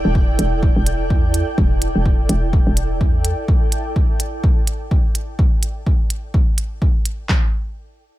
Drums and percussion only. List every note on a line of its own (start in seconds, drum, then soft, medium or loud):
0.15 kick loud
0.39 closed hi-hat medium
0.63 kick loud
0.86 closed hi-hat medium
1.10 kick loud
1.34 closed hi-hat medium
1.58 kick loud
1.82 closed hi-hat medium
2.06 kick medium
2.29 closed hi-hat medium
2.53 kick loud
2.77 closed hi-hat medium
3.01 kick medium
3.25 closed hi-hat medium
3.48 kick loud
3.72 closed hi-hat medium
3.96 kick medium
4.20 closed hi-hat medium
4.44 kick loud
4.67 closed hi-hat medium
4.91 kick medium
5.15 closed hi-hat medium
5.39 kick loud
5.63 closed hi-hat medium
5.86 kick medium
6.10 closed hi-hat medium
6.34 kick loud
6.58 closed hi-hat medium
6.82 kick medium
7.05 closed hi-hat medium
7.29 kick loud
7.29 snare medium
7.29 clap medium